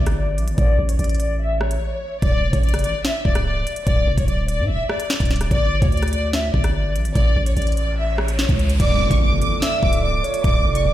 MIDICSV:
0, 0, Header, 1, 8, 480
1, 0, Start_track
1, 0, Key_signature, -1, "minor"
1, 0, Tempo, 410959
1, 677, Time_signature, 4, 2, 24, 8
1, 12772, End_track
2, 0, Start_track
2, 0, Title_t, "Soft synth lead"
2, 0, Program_c, 0, 80
2, 10278, Note_on_c, 0, 74, 117
2, 10729, Note_off_c, 0, 74, 0
2, 11235, Note_on_c, 0, 76, 93
2, 11687, Note_off_c, 0, 76, 0
2, 11717, Note_on_c, 0, 74, 85
2, 11945, Note_off_c, 0, 74, 0
2, 11954, Note_on_c, 0, 73, 81
2, 12184, Note_off_c, 0, 73, 0
2, 12195, Note_on_c, 0, 74, 127
2, 12772, Note_off_c, 0, 74, 0
2, 12772, End_track
3, 0, Start_track
3, 0, Title_t, "Violin section"
3, 0, Program_c, 1, 48
3, 0, Note_on_c, 1, 74, 73
3, 179, Note_off_c, 1, 74, 0
3, 197, Note_on_c, 1, 74, 79
3, 419, Note_off_c, 1, 74, 0
3, 676, Note_on_c, 1, 74, 99
3, 1015, Note_off_c, 1, 74, 0
3, 1037, Note_on_c, 1, 73, 75
3, 1148, Note_off_c, 1, 73, 0
3, 1156, Note_on_c, 1, 74, 75
3, 1379, Note_off_c, 1, 74, 0
3, 1398, Note_on_c, 1, 74, 80
3, 1620, Note_off_c, 1, 74, 0
3, 1638, Note_on_c, 1, 76, 92
3, 1860, Note_off_c, 1, 76, 0
3, 1878, Note_on_c, 1, 73, 71
3, 2554, Note_off_c, 1, 73, 0
3, 2597, Note_on_c, 1, 74, 96
3, 2936, Note_off_c, 1, 74, 0
3, 2957, Note_on_c, 1, 73, 74
3, 3068, Note_off_c, 1, 73, 0
3, 3078, Note_on_c, 1, 74, 84
3, 3300, Note_off_c, 1, 74, 0
3, 3317, Note_on_c, 1, 74, 81
3, 3540, Note_off_c, 1, 74, 0
3, 3558, Note_on_c, 1, 76, 85
3, 3780, Note_off_c, 1, 76, 0
3, 3796, Note_on_c, 1, 74, 87
3, 4019, Note_off_c, 1, 74, 0
3, 4037, Note_on_c, 1, 74, 83
3, 4260, Note_off_c, 1, 74, 0
3, 4518, Note_on_c, 1, 74, 99
3, 4856, Note_off_c, 1, 74, 0
3, 4877, Note_on_c, 1, 73, 77
3, 4988, Note_off_c, 1, 73, 0
3, 4998, Note_on_c, 1, 74, 74
3, 5220, Note_off_c, 1, 74, 0
3, 5238, Note_on_c, 1, 74, 80
3, 5460, Note_off_c, 1, 74, 0
3, 5477, Note_on_c, 1, 76, 90
3, 5699, Note_off_c, 1, 76, 0
3, 5717, Note_on_c, 1, 74, 76
3, 6394, Note_off_c, 1, 74, 0
3, 6438, Note_on_c, 1, 74, 111
3, 6776, Note_off_c, 1, 74, 0
3, 6797, Note_on_c, 1, 73, 73
3, 6908, Note_off_c, 1, 73, 0
3, 6917, Note_on_c, 1, 74, 92
3, 7139, Note_off_c, 1, 74, 0
3, 7157, Note_on_c, 1, 74, 84
3, 7379, Note_off_c, 1, 74, 0
3, 7397, Note_on_c, 1, 76, 77
3, 7619, Note_off_c, 1, 76, 0
3, 7636, Note_on_c, 1, 74, 76
3, 7859, Note_off_c, 1, 74, 0
3, 7877, Note_on_c, 1, 74, 78
3, 8099, Note_off_c, 1, 74, 0
3, 8357, Note_on_c, 1, 74, 103
3, 8695, Note_off_c, 1, 74, 0
3, 8717, Note_on_c, 1, 73, 77
3, 8828, Note_off_c, 1, 73, 0
3, 8836, Note_on_c, 1, 74, 72
3, 9059, Note_off_c, 1, 74, 0
3, 9077, Note_on_c, 1, 74, 78
3, 9299, Note_off_c, 1, 74, 0
3, 9318, Note_on_c, 1, 76, 89
3, 9540, Note_off_c, 1, 76, 0
3, 9557, Note_on_c, 1, 73, 73
3, 10234, Note_off_c, 1, 73, 0
3, 10277, Note_on_c, 1, 86, 101
3, 10616, Note_off_c, 1, 86, 0
3, 10637, Note_on_c, 1, 85, 75
3, 10748, Note_off_c, 1, 85, 0
3, 10758, Note_on_c, 1, 86, 87
3, 10980, Note_off_c, 1, 86, 0
3, 10997, Note_on_c, 1, 86, 84
3, 11219, Note_off_c, 1, 86, 0
3, 11237, Note_on_c, 1, 88, 90
3, 11459, Note_off_c, 1, 88, 0
3, 11477, Note_on_c, 1, 86, 94
3, 11699, Note_off_c, 1, 86, 0
3, 11717, Note_on_c, 1, 86, 88
3, 11939, Note_off_c, 1, 86, 0
3, 12198, Note_on_c, 1, 86, 99
3, 12536, Note_off_c, 1, 86, 0
3, 12557, Note_on_c, 1, 85, 80
3, 12668, Note_off_c, 1, 85, 0
3, 12677, Note_on_c, 1, 86, 71
3, 12772, Note_off_c, 1, 86, 0
3, 12772, End_track
4, 0, Start_track
4, 0, Title_t, "Glass harmonica"
4, 0, Program_c, 2, 92
4, 10277, Note_on_c, 2, 65, 72
4, 10277, Note_on_c, 2, 69, 70
4, 10277, Note_on_c, 2, 74, 80
4, 12772, Note_off_c, 2, 65, 0
4, 12772, Note_off_c, 2, 69, 0
4, 12772, Note_off_c, 2, 74, 0
4, 12772, End_track
5, 0, Start_track
5, 0, Title_t, "808-style bass"
5, 0, Program_c, 3, 38
5, 0, Note_on_c, 3, 31, 100
5, 437, Note_on_c, 3, 34, 104
5, 455, Note_off_c, 3, 31, 0
5, 557, Note_on_c, 3, 31, 96
5, 575, Note_off_c, 3, 34, 0
5, 671, Note_off_c, 3, 31, 0
5, 677, Note_on_c, 3, 33, 107
5, 908, Note_off_c, 3, 33, 0
5, 917, Note_on_c, 3, 33, 105
5, 1148, Note_off_c, 3, 33, 0
5, 1157, Note_on_c, 3, 33, 112
5, 2079, Note_off_c, 3, 33, 0
5, 2597, Note_on_c, 3, 26, 107
5, 2837, Note_on_c, 3, 29, 97
5, 2854, Note_off_c, 3, 26, 0
5, 2951, Note_off_c, 3, 29, 0
5, 2957, Note_on_c, 3, 33, 109
5, 3197, Note_on_c, 3, 29, 101
5, 3214, Note_off_c, 3, 33, 0
5, 3317, Note_on_c, 3, 33, 96
5, 3334, Note_off_c, 3, 29, 0
5, 3431, Note_off_c, 3, 33, 0
5, 3798, Note_on_c, 3, 25, 98
5, 4258, Note_off_c, 3, 25, 0
5, 4517, Note_on_c, 3, 26, 109
5, 4747, Note_off_c, 3, 26, 0
5, 4757, Note_on_c, 3, 29, 105
5, 4870, Note_off_c, 3, 29, 0
5, 4877, Note_on_c, 3, 26, 101
5, 4992, Note_off_c, 3, 26, 0
5, 4997, Note_on_c, 3, 26, 104
5, 5357, Note_on_c, 3, 45, 98
5, 5374, Note_off_c, 3, 26, 0
5, 5477, Note_on_c, 3, 26, 97
5, 5495, Note_off_c, 3, 45, 0
5, 5591, Note_off_c, 3, 26, 0
5, 6077, Note_on_c, 3, 26, 100
5, 6422, Note_off_c, 3, 26, 0
5, 6437, Note_on_c, 3, 31, 106
5, 6783, Note_off_c, 3, 31, 0
5, 6797, Note_on_c, 3, 38, 103
5, 7603, Note_off_c, 3, 38, 0
5, 7638, Note_on_c, 3, 31, 104
5, 8117, Note_on_c, 3, 34, 96
5, 8135, Note_off_c, 3, 31, 0
5, 8237, Note_on_c, 3, 31, 98
5, 8255, Note_off_c, 3, 34, 0
5, 8351, Note_off_c, 3, 31, 0
5, 8357, Note_on_c, 3, 33, 108
5, 8588, Note_off_c, 3, 33, 0
5, 8597, Note_on_c, 3, 33, 106
5, 8828, Note_off_c, 3, 33, 0
5, 8837, Note_on_c, 3, 33, 107
5, 9874, Note_off_c, 3, 33, 0
5, 9917, Note_on_c, 3, 37, 98
5, 10263, Note_off_c, 3, 37, 0
5, 10277, Note_on_c, 3, 26, 104
5, 10517, Note_on_c, 3, 29, 100
5, 10535, Note_off_c, 3, 26, 0
5, 10631, Note_off_c, 3, 29, 0
5, 10637, Note_on_c, 3, 33, 110
5, 10877, Note_on_c, 3, 29, 101
5, 10895, Note_off_c, 3, 33, 0
5, 10997, Note_on_c, 3, 33, 103
5, 11014, Note_off_c, 3, 29, 0
5, 11111, Note_off_c, 3, 33, 0
5, 11478, Note_on_c, 3, 25, 104
5, 11938, Note_off_c, 3, 25, 0
5, 12197, Note_on_c, 3, 26, 108
5, 12428, Note_off_c, 3, 26, 0
5, 12437, Note_on_c, 3, 29, 105
5, 12667, Note_off_c, 3, 29, 0
5, 12677, Note_on_c, 3, 26, 107
5, 12772, Note_off_c, 3, 26, 0
5, 12772, End_track
6, 0, Start_track
6, 0, Title_t, "Impact"
6, 0, Program_c, 4, 103
6, 10277, Note_on_c, 4, 60, 83
6, 12197, Note_off_c, 4, 60, 0
6, 12772, End_track
7, 0, Start_track
7, 0, Title_t, "Riser"
7, 0, Program_c, 5, 103
7, 8357, Note_on_c, 5, 60, 86
7, 10277, Note_off_c, 5, 60, 0
7, 12772, End_track
8, 0, Start_track
8, 0, Title_t, "Drums"
8, 75, Note_on_c, 9, 42, 83
8, 78, Note_on_c, 9, 37, 89
8, 191, Note_off_c, 9, 42, 0
8, 194, Note_off_c, 9, 37, 0
8, 444, Note_on_c, 9, 42, 77
8, 556, Note_off_c, 9, 42, 0
8, 556, Note_on_c, 9, 42, 76
8, 673, Note_off_c, 9, 42, 0
8, 677, Note_on_c, 9, 36, 116
8, 677, Note_on_c, 9, 42, 82
8, 794, Note_off_c, 9, 36, 0
8, 794, Note_off_c, 9, 42, 0
8, 1038, Note_on_c, 9, 42, 91
8, 1155, Note_off_c, 9, 42, 0
8, 1157, Note_on_c, 9, 42, 74
8, 1218, Note_off_c, 9, 42, 0
8, 1218, Note_on_c, 9, 42, 66
8, 1277, Note_off_c, 9, 42, 0
8, 1277, Note_on_c, 9, 42, 52
8, 1337, Note_off_c, 9, 42, 0
8, 1337, Note_on_c, 9, 42, 44
8, 1398, Note_off_c, 9, 42, 0
8, 1398, Note_on_c, 9, 42, 73
8, 1514, Note_off_c, 9, 42, 0
8, 1877, Note_on_c, 9, 37, 94
8, 1994, Note_off_c, 9, 37, 0
8, 1995, Note_on_c, 9, 42, 84
8, 2112, Note_off_c, 9, 42, 0
8, 2597, Note_on_c, 9, 36, 121
8, 2597, Note_on_c, 9, 42, 79
8, 2714, Note_off_c, 9, 36, 0
8, 2714, Note_off_c, 9, 42, 0
8, 2957, Note_on_c, 9, 36, 95
8, 2958, Note_on_c, 9, 42, 85
8, 3074, Note_off_c, 9, 36, 0
8, 3075, Note_off_c, 9, 42, 0
8, 3077, Note_on_c, 9, 42, 46
8, 3137, Note_off_c, 9, 42, 0
8, 3137, Note_on_c, 9, 42, 55
8, 3197, Note_off_c, 9, 42, 0
8, 3197, Note_on_c, 9, 37, 74
8, 3197, Note_on_c, 9, 42, 65
8, 3257, Note_off_c, 9, 42, 0
8, 3257, Note_on_c, 9, 42, 74
8, 3314, Note_off_c, 9, 37, 0
8, 3317, Note_off_c, 9, 42, 0
8, 3317, Note_on_c, 9, 42, 79
8, 3434, Note_off_c, 9, 42, 0
8, 3558, Note_on_c, 9, 38, 117
8, 3675, Note_off_c, 9, 38, 0
8, 3798, Note_on_c, 9, 36, 103
8, 3914, Note_on_c, 9, 42, 82
8, 3915, Note_off_c, 9, 36, 0
8, 3917, Note_on_c, 9, 37, 90
8, 4031, Note_off_c, 9, 42, 0
8, 4034, Note_off_c, 9, 37, 0
8, 4284, Note_on_c, 9, 42, 76
8, 4395, Note_off_c, 9, 42, 0
8, 4395, Note_on_c, 9, 42, 78
8, 4512, Note_off_c, 9, 42, 0
8, 4516, Note_on_c, 9, 42, 83
8, 4517, Note_on_c, 9, 36, 123
8, 4633, Note_off_c, 9, 42, 0
8, 4634, Note_off_c, 9, 36, 0
8, 4877, Note_on_c, 9, 36, 92
8, 4878, Note_on_c, 9, 42, 87
8, 4994, Note_off_c, 9, 36, 0
8, 4995, Note_off_c, 9, 42, 0
8, 5000, Note_on_c, 9, 42, 72
8, 5116, Note_off_c, 9, 42, 0
8, 5238, Note_on_c, 9, 42, 78
8, 5355, Note_off_c, 9, 42, 0
8, 5717, Note_on_c, 9, 37, 96
8, 5834, Note_off_c, 9, 37, 0
8, 5835, Note_on_c, 9, 42, 82
8, 5952, Note_off_c, 9, 42, 0
8, 5957, Note_on_c, 9, 38, 113
8, 6074, Note_off_c, 9, 38, 0
8, 6077, Note_on_c, 9, 36, 98
8, 6077, Note_on_c, 9, 42, 63
8, 6137, Note_off_c, 9, 42, 0
8, 6137, Note_on_c, 9, 42, 63
8, 6194, Note_off_c, 9, 36, 0
8, 6197, Note_off_c, 9, 42, 0
8, 6197, Note_on_c, 9, 38, 70
8, 6197, Note_on_c, 9, 42, 64
8, 6257, Note_off_c, 9, 42, 0
8, 6257, Note_on_c, 9, 42, 66
8, 6314, Note_off_c, 9, 38, 0
8, 6316, Note_off_c, 9, 42, 0
8, 6316, Note_on_c, 9, 42, 77
8, 6317, Note_on_c, 9, 37, 66
8, 6432, Note_off_c, 9, 42, 0
8, 6434, Note_off_c, 9, 37, 0
8, 6437, Note_on_c, 9, 36, 119
8, 6437, Note_on_c, 9, 42, 78
8, 6554, Note_off_c, 9, 36, 0
8, 6554, Note_off_c, 9, 42, 0
8, 6797, Note_on_c, 9, 36, 95
8, 6798, Note_on_c, 9, 42, 87
8, 6914, Note_off_c, 9, 36, 0
8, 6915, Note_off_c, 9, 42, 0
8, 6917, Note_on_c, 9, 42, 45
8, 6977, Note_off_c, 9, 42, 0
8, 6977, Note_on_c, 9, 42, 56
8, 7037, Note_off_c, 9, 42, 0
8, 7037, Note_on_c, 9, 37, 70
8, 7037, Note_on_c, 9, 42, 65
8, 7097, Note_off_c, 9, 42, 0
8, 7097, Note_on_c, 9, 42, 76
8, 7154, Note_off_c, 9, 37, 0
8, 7157, Note_off_c, 9, 42, 0
8, 7157, Note_on_c, 9, 42, 79
8, 7274, Note_off_c, 9, 42, 0
8, 7398, Note_on_c, 9, 38, 114
8, 7515, Note_off_c, 9, 38, 0
8, 7638, Note_on_c, 9, 36, 103
8, 7755, Note_off_c, 9, 36, 0
8, 7755, Note_on_c, 9, 42, 83
8, 7758, Note_on_c, 9, 37, 90
8, 7872, Note_off_c, 9, 42, 0
8, 7875, Note_off_c, 9, 37, 0
8, 8124, Note_on_c, 9, 42, 78
8, 8236, Note_off_c, 9, 42, 0
8, 8236, Note_on_c, 9, 42, 78
8, 8352, Note_off_c, 9, 42, 0
8, 8357, Note_on_c, 9, 36, 123
8, 8357, Note_on_c, 9, 42, 79
8, 8473, Note_off_c, 9, 42, 0
8, 8474, Note_off_c, 9, 36, 0
8, 8718, Note_on_c, 9, 42, 89
8, 8835, Note_off_c, 9, 42, 0
8, 8837, Note_on_c, 9, 42, 75
8, 8897, Note_off_c, 9, 42, 0
8, 8897, Note_on_c, 9, 42, 65
8, 8958, Note_off_c, 9, 42, 0
8, 8958, Note_on_c, 9, 42, 54
8, 9018, Note_off_c, 9, 42, 0
8, 9018, Note_on_c, 9, 42, 42
8, 9078, Note_off_c, 9, 42, 0
8, 9078, Note_on_c, 9, 42, 76
8, 9195, Note_off_c, 9, 42, 0
8, 9557, Note_on_c, 9, 37, 100
8, 9674, Note_off_c, 9, 37, 0
8, 9675, Note_on_c, 9, 42, 82
8, 9792, Note_off_c, 9, 42, 0
8, 9797, Note_on_c, 9, 38, 118
8, 9914, Note_off_c, 9, 38, 0
8, 9917, Note_on_c, 9, 36, 100
8, 9917, Note_on_c, 9, 42, 62
8, 10033, Note_off_c, 9, 36, 0
8, 10034, Note_off_c, 9, 42, 0
8, 10037, Note_on_c, 9, 42, 64
8, 10154, Note_off_c, 9, 42, 0
8, 10155, Note_on_c, 9, 42, 79
8, 10272, Note_off_c, 9, 42, 0
8, 10277, Note_on_c, 9, 36, 125
8, 10277, Note_on_c, 9, 42, 84
8, 10277, Note_on_c, 9, 49, 101
8, 10393, Note_off_c, 9, 42, 0
8, 10394, Note_off_c, 9, 36, 0
8, 10394, Note_off_c, 9, 49, 0
8, 10637, Note_on_c, 9, 36, 94
8, 10638, Note_on_c, 9, 42, 89
8, 10754, Note_off_c, 9, 36, 0
8, 10754, Note_off_c, 9, 42, 0
8, 10998, Note_on_c, 9, 42, 73
8, 11114, Note_off_c, 9, 42, 0
8, 11238, Note_on_c, 9, 38, 123
8, 11240, Note_on_c, 9, 42, 79
8, 11355, Note_off_c, 9, 38, 0
8, 11357, Note_off_c, 9, 42, 0
8, 11478, Note_on_c, 9, 36, 104
8, 11595, Note_off_c, 9, 36, 0
8, 11595, Note_on_c, 9, 42, 84
8, 11712, Note_off_c, 9, 42, 0
8, 11964, Note_on_c, 9, 42, 79
8, 12076, Note_off_c, 9, 42, 0
8, 12076, Note_on_c, 9, 42, 77
8, 12192, Note_off_c, 9, 42, 0
8, 12197, Note_on_c, 9, 36, 126
8, 12197, Note_on_c, 9, 42, 84
8, 12314, Note_off_c, 9, 36, 0
8, 12314, Note_off_c, 9, 42, 0
8, 12558, Note_on_c, 9, 42, 91
8, 12675, Note_off_c, 9, 42, 0
8, 12772, End_track
0, 0, End_of_file